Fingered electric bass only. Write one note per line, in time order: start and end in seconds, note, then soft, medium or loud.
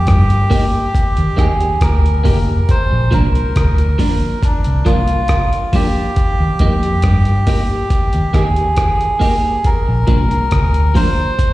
0.08 0.47 G2 medium
1.18 1.36 D#2 medium
1.39 1.77 D#2 medium
1.82 2.21 D2 medium
2.26 2.46 F1 medium
2.92 3.11 A#1 medium
3.13 3.52 C2 medium
3.56 3.95 D2 medium
4.67 4.85 C2 medium
4.87 5.25 C2 medium
6.40 6.59 D#2 medium
6.60 6.99 F2 medium
7.04 7.43 G2 medium
8.14 8.33 D#2 medium
8.34 8.73 D#2 medium
9.88 10.07 A#1 loud
10.08 10.47 C2 medium
10.53 10.91 D2 medium